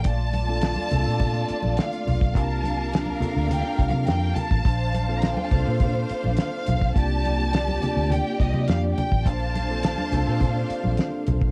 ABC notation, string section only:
X:1
M:4/4
L:1/8
Q:1/4=104
K:Bb
V:1 name="String section"
[A,Fd]8 | [DBf]8 | [Dcf]8 | [B,Gd]8 |
[Dcf]8 |]